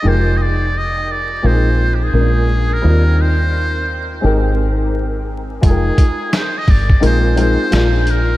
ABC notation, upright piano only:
X:1
M:4/4
L:1/8
Q:"Swing 16ths" 1/4=86
K:Fdor
V:1 name="Upright piano"
[A,EFGB]4 [A,CEFB]2 [A,B,_D=DFB]2 | [G,CEFB]4 [A,CEGB]4 | [A,EF=ABg]3 z [_A,CEFB] [A,CEFB] [A,B,DFB]2 |]